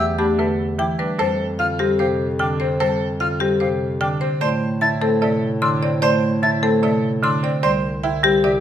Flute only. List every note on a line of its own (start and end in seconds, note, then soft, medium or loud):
0.18 0.26 B5 medium
0.39 0.46 E5 medium
0.79 0.86 D6 medium
1.19 1.27 A5 medium
1.59 1.67 F6 medium
2.00 2.07 F5 medium
2.40 2.48 D6 medium
2.80 2.88 A5 medium
3.20 3.28 F6 medium
3.61 3.68 F5 medium
4.01 4.09 D6 medium
4.41 4.49 C6 medium
4.82 4.89 A6 medium
5.22 5.29 E5 medium
5.62 5.70 E6 medium
6.02 6.10 C6 loud
6.43 6.50 A6 loud
6.83 6.90 E5 medium
7.23 7.30 E6 medium
7.63 7.71 C6 loud
8.44 8.51 E5 medium